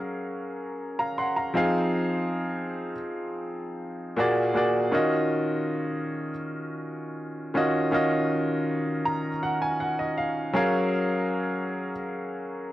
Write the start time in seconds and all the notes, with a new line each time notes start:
Already playing: F#3 C#4 G#4 A#4 F5 A#5
0.99 F5 A#5
1.18 F#5 C6
1.36 F5 A#5
1.54 F3 C4 D#4 G#4 F5
4.17 A#2 A#3 F#4 G#4 D5
4.54 A#2 A#3 F#4 G#4 D5
4.91 D#3 C#4 F4 F#4 D#5
7.54 D#3 C#4 F4 F#4 D#5
7.91 D#3 C#4 F4 F#4 D#5
9.05 A#5
9.43 F#5
9.62 G#5
9.80 F#5
9.99 D#5
10.18 F5
10.54 F#3 C#4 G#4 A#4 C#5 F5